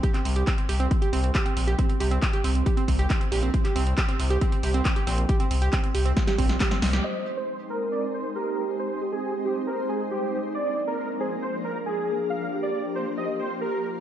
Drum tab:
HH |xxoxxxoxxxoxxxox|xxoxxxoxxxoxxxox|xxoxxxoxxxoxxxox|xxoxxxoxxxoxxxox|
CP |-x--x-------x---|----x-------x---|-x--x-------x---|----x-------x---|
SD |----------------|----------------|----------------|--------oo-ooooo|
BD |o---o---o---o---|o---o---o-o-o---|o---o---o---o---|o---o---o-o-o---|

HH |----------------|----------------|----------------|----------------|
CP |----------------|----------------|----------------|----------------|
SD |----------------|----------------|----------------|----------------|
BD |----------------|----------------|----------------|----------------|